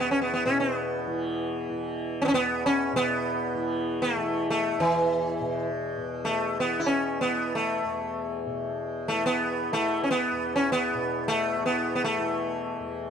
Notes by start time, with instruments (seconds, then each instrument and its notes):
Already playing: tanpura E2 B2 E3
0.00 sitar B3
0.11 sitar C#4
0.21 sitar B3
0.34 sitar B3
0.45 tanpura B2, sitar C#4
0.60 sitar B3
1.07 tanpura E3
1.69 tanpura E3
2.22 sitar B3 C#4
2.28 tanpura E2, sitar C#4
2.34 sitar B3
2.66 sitar C#4
2.92 tanpura B2, sitar B3
3.54 tanpura E3
4.02 sitar A3
4.16 tanpura E3
4.50 sitar A3
4.78 tanpura E2, sitar E3
5.40 tanpura B2
5.97 tanpura B2
6.25 sitar A3
6.60 tanpura E3, sitar B3
6.80 sitar E4
6.86 sitar C#4
7.21 tanpura E3, sitar B3
7.55 sitar A3
7.85 tanpura E2
8.46 tanpura B2
9.08 tanpura E3, sitar A3
9.26 sitar B3
9.71 tanpura E3, sitar A3
10.04 sitar C#4
10.11 sitar B3
10.32 tanpura E2
10.56 sitar C#4
10.72 sitar B3
10.94 tanpura B2
11.28 sitar A3
11.56 tanpura E3
11.66 sitar B3
11.95 sitar B3
12.04 sitar A3
12.18 tanpura E3
12.79 tanpura E2